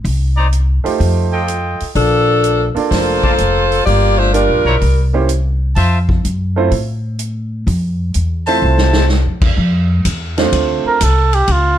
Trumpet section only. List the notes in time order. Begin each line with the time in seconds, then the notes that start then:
0.36 D#4 C5 D5 A#5
1.32 F4 A4 D#5 G5
3.23 F4 A#4 D5 A5
4.66 E4 C5 C#5 A#5
5.76 F4 C5 E5 A5
8.47 C5 E5 A5